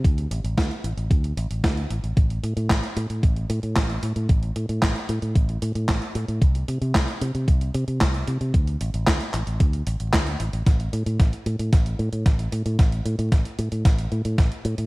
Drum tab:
HH |xxxxxxxxxxxxxxxx|xxxxxxxxxxxxxxxx|xxxxxxxxxxxxxxxx|xxxxxxxxxxxxxxxx|
CP |----------------|----x-------x---|----x-------x---|----x-------x---|
SD |----o-------o---|----o-------o---|----o-------o---|----o-------o---|
BD |o---o---o---o---|o---o---o---o---|o---o---o---o---|o---o---o---o---|

HH |xxxxxxxxxxxxxxxx|xxxxxxxxxxxxxxxx|xxxxxxxxxxxxxxxx|
CP |----x-x-----x---|----------------|----------------|
SD |----o-------o---|o---o---o---o---|o---o---o---o---|
BD |o---o---o---o---|o---o---o---o---|o---o---o---o---|